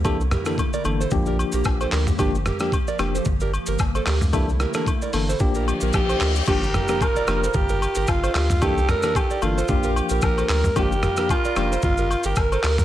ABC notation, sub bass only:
X:1
M:4/4
L:1/16
Q:"Swing 16ths" 1/4=112
K:Gdor
V:1 name="Sub bass" clef=bass
C,,3 z3 G,,,2 B,,,3 B,,, B,,,2 D,,2 | G,,,3 z3 F,,,2 G,,,3 G,,, G,,,2 D,,2 | C,,3 z3 G,,,2 B,,,3 B,,, B,,,2 D,,2 | G,,,3 z3 F,,,2 G,,,3 G,,, G,,,2 D,,2 |
C,,3 z3 G,,,2 B,,,3 B,,, B,,,2 D,,2 | G,,,3 z3 F,,,2 G,,,3 G,,, G,,,2 D,,2 |]